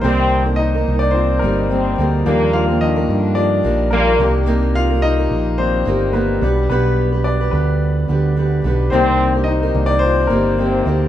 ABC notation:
X:1
M:4/4
L:1/16
Q:"Swing 16ths" 1/4=108
K:Gphr
V:1 name="Steel-string acoustic guitar"
[C,G,B,EB]3 [B,EB]2 [B,EB]4- [B,EB] [G,B,EB]2 [G,B,EB]2 [G,B,EB]2 | [E,G,B,DB]3 [B,DB]2 [B,DB]4- [B,DB] [G,B,DB]2 [G,B,DB]2 [B,EGB]2 | [C,B,EGB]3 [EGB]2 [EGB]4- [EGB] [B,EGB]2 [B,EGB]2 [=B,DG=B]2 | [=B,DG=B]3 [DGB]2 [DGB]4- [DGB] [B,DGB]2 [B,DGB]2 [B,DGB]2 |
[C,B,EGB]3 [EGB]2 [EGB]4- [EGB] [B,EGB]2 [B,EGB]2 [B,EGB]2 |]
V:2 name="Grand piano"
[Cc]4 [Ee]3 [Dd] [Cc]2 [B,B]4 z2 | z2 [Ff]2 [E,e]4 d4 [B,B]3 z | z2 [Ff]2 [Ee]4 [Cc]4 [=B,=B]3 z | [=B,=B]4 [Dd]2 [B,B]8 z2 |
[Cc]4 [Ee]3 [Dd] [Cc]2 [B,B]4 z2 |]
V:3 name="Grand piano"
[E,B,d]16 | [F,G,D]6 z2 [F,G,D]2 z4 [E,B,D]2 | z8 [E,B,D]2 z4 [G,=B,D]2- | [G,=B,D]4 z12 |
[E,B,d]6 [E,B,D]2 z8 |]
V:4 name="French horn section" clef=bass
[C,C]3 [D,D] [E,E]2 [E,E]2 [F,F]2 [E,E]2 [C,C]3 z | [B,,B,]3 [C,C] [D,D]2 [D,D]4 z2 [B,,B,]3 z | z16 | z16 |
[C,C]3 [D,D] [E,E]2 [E,E]2 [F,F]2 [E,E]2 [C,C]3 z |]
V:5 name="Picked electric bass" clef=bass
C,,6 C,,4 G,,,4 D,,2 | E,,6 G,,4 B,,,4 C,,2- | C,,6 B,,,4 G,,,4 =B,,,2 | =B,,,6 D,,4 D,,4 B,,,2 |
C,,6 C,,4 G,,,4 D,,2 |]